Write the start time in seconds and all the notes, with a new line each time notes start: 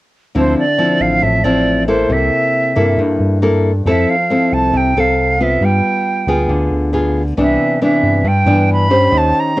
0.35 D2 D3 F3 C4 E4 C5
0.59 D5
0.78 F3 C4 E4
1.00 A1 F5
1.21 A1 A2 E5
1.44 A1 F3 C4 E4 D5
1.88 A#3 E4 A4 C5
2.09 C2 C3 E5
2.76 G2 A#3 E4 A4
2.98 G2
3.20 G2
3.42 A#3 E4 A4
3.85 F2 F3 C4 E4 A4 E5
4.10 F5
4.30 C4 E4 A4
4.52 C2 A5
4.73 C2 C3 G5
4.96 C2 C4 A4 F5
5.40 B3 F4 E5
5.61 G2 G3
5.65 G5
6.27 D2 B3 F4 G#4
6.48 D2 D3
6.71 D2
6.93 B3 F4 G#4
7.37 C2 C3 E3 B3 D4
7.41 E5
7.81 E3 B3 D4 E5
8.03 G2
8.24 G2
8.28 G5
8.46 G2 E3 B3 D4
8.73 B5
8.90 C#4 G4 C5
9.12 D#2 D#3
9.18 A5
9.40 A#5
9.57 C#4